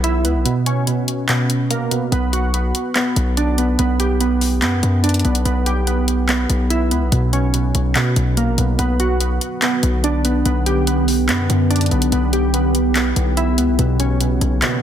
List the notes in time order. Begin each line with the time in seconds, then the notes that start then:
Already playing: B1 B3 G4
0.04 E4, closed hi-hat
0.25 C#2 B3, closed hi-hat
0.35 B1
0.45 B2, closed hi-hat
0.66 C#4, closed hi-hat
0.87 B2, closed hi-hat
1.08 closed hi-hat
1.29 B2, clap, closed hi-hat
1.50 closed hi-hat
1.71 A#3, closed hi-hat
1.91 B2, closed hi-hat
2.12 B1 B3, closed hi-hat
2.33 F#4, closed hi-hat
2.54 B3, closed hi-hat
2.75 closed hi-hat
2.96 B3, clap, closed hi-hat
3.16 B1, closed hi-hat
3.37 D4, closed hi-hat
3.58 B3, closed hi-hat
3.79 B1 B3, closed hi-hat
4.00 G4, closed hi-hat
4.21 B3, closed hi-hat
4.41 open hi-hat
4.62 F#2 B3, clap, closed hi-hat
4.83 F#2, closed hi-hat
5.04 D4, closed hi-hat
5.09 closed hi-hat
5.14 closed hi-hat
5.19 closed hi-hat
5.25 B1 B3, closed hi-hat
5.35 closed hi-hat
5.45 B1 B3, closed hi-hat
5.66 G4, closed hi-hat
5.87 B3, closed hi-hat
6.08 closed hi-hat
6.29 B3, clap, closed hi-hat
6.50 B1, closed hi-hat
6.70 E4, closed hi-hat
6.91 C#2 B3, closed hi-hat
7.02 B1
7.12 B1 B2, closed hi-hat
7.33 C#4, closed hi-hat
7.54 B2, closed hi-hat
7.75 B1, closed hi-hat
7.95 B2, clap, closed hi-hat
8.16 B1, closed hi-hat
8.37 A#3, closed hi-hat
8.48 A#1
8.58 B1 B2, closed hi-hat
8.79 B1 D3 F#3 B3, closed hi-hat
9.00 F#4, closed hi-hat
9.21 B3, closed hi-hat
9.41 closed hi-hat
9.62 B3, clap, closed hi-hat
9.83 B1, closed hi-hat
10.04 D4, closed hi-hat
10.25 B3, closed hi-hat
10.46 B1 B3 G4, closed hi-hat
10.66 G4, closed hi-hat
10.87 B3, closed hi-hat
11.08 open hi-hat
11.29 F#2 B3, clap, closed hi-hat
11.50 F#2, closed hi-hat
11.70 D4, closed hi-hat
11.76 closed hi-hat
11.81 closed hi-hat
11.86 closed hi-hat
11.91 B1 B3, closed hi-hat
12.02 closed hi-hat
12.12 B1 E3 B3, closed hi-hat
12.33 G4, closed hi-hat
12.54 B3, closed hi-hat
12.75 closed hi-hat
12.95 B3, clap, closed hi-hat
13.16 B1, closed hi-hat
13.37 E4, closed hi-hat
13.58 C#2 B3, closed hi-hat
13.68 B1
13.79 B1 B2 C#3 F#3 A#3, closed hi-hat
14.00 C#4, closed hi-hat
14.21 B2, closed hi-hat
14.41 B1, closed hi-hat
14.62 B2, clap, closed hi-hat